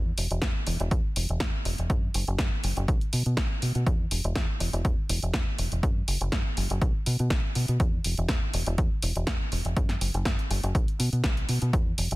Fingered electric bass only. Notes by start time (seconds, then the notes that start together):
Already playing: E2
0.18 E1
0.31 E1
0.42 E2
0.67 E1
0.80 E1
1.16 E1
1.29 E1
1.65 E1
1.79 E1
1.90 F#2
2.15 F#1
2.28 F#1
2.64 F#1
2.77 F#1
3.13 B2
3.26 B2
3.37 B1
3.62 B2
3.75 B2
3.87 E2
4.11 E1
4.24 E1
4.60 E1
4.73 E1
4.85 E2
5.09 E1
5.23 E1
5.59 E1
5.72 E1
5.83 F#2
6.08 F#1
6.21 F#1
6.32 F#2
6.57 F#1
6.70 F#1
7.07 B2
7.20 B2
7.31 B1
7.56 B2
7.69 B2
7.80 E2
8.05 E1
8.18 E1
8.54 E1
8.67 E1
8.78 E2
9.03 E1
9.16 E1
9.52 E1
9.65 E1
9.77 F#2
10.01 F#1
10.14 F#1
10.50 F#1
10.63 F#1
11.00 B2
11.13 B2
11.24 B1
11.49 B2
11.62 B2
11.73 E2
11.98 E1
12.11 E1